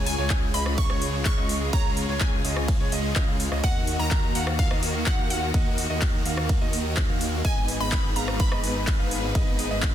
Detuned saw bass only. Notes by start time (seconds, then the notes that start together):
Already playing: C#2
0.18 C#2
0.54 C#2
0.90 C#2
1.37 C#2
1.73 C#2
2.09 C#2
2.45 C#2
2.80 C#2
2.92 C#2
3.16 C#2
3.28 C#2
3.52 C#2
3.64 D#2
3.99 D#2
4.35 D#2
4.71 D#2
5.18 D#2
5.54 D#2
5.90 D#2
6.26 D#2
6.61 D#2
7.09 D#2
7.45 G#1
7.80 G#1
8.16 G#1
8.52 G#1
8.99 G#1
9.35 G#1
9.71 G#1